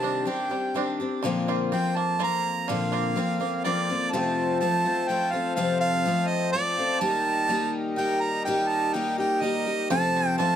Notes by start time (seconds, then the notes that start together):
Already playing: C3 D#3 C4 D4 G4 A5
0.02 G3 C4 D4
0.25 D#3 C4 D4 G4 G5
0.50 G3 C4 D4 G4
0.74 D#3 G3 C4 D4 G4
1.00 C4 D4 G4
1.23 A#2 D3 F3 A#3 C4 F4
1.48 A#3 C4 F4
1.72 F3 A#3 C4 F4 G5
1.96 A#3 A5
2.19 F3 A#3 C4 F4
2.23 A#5
2.68 A#2 D3 F3 A#3 C4 F4 F5
2.92 A#3 C4 F4
3.16 F3 A#3 C4 F4
3.40 F3 A#3 C4 F4
3.64 F3 A#3 C4 F4 D5
3.89 F3 A#3 C4 F4
4.13 F2 C3 F3 A3 C4 F4 A4 A5
4.60 F3 A3 C4 F4 A5
4.84 F3 A3 C4 F4
5.08 F3 A3 C4 F4 G5
5.31 A3 C4 F4 F5
5.35 F3
5.55 F2 C3 F3 A3 C4 F4 F5
5.80 F5
6.05 F3 A3 C4 F4
6.27 D#5
6.52 F3 A3 C4 F4 D5
6.78 F3 A3 C4 F4
7.01 D#3 G3 A#3 D#4 G4 A#4 A5
7.48 D#3 A#3 D#4 G4
7.96 D#3 A#3 D#4 G4 G5
8.21 A#5
8.45 D#3 A#3 D#4 G4 G5
8.69 A5
8.93 D#3 A#3 D#4 G4 G5
9.18 A#3 D#4 G4 G5
9.41 D#3 A#3 D#4 G4 D#5
9.66 A#3 D#4 G4
9.90 F2 C3 F3 A3 C4 A4 A5
10.16 C4
10.38 F3 A3 C4 F4 A4 A5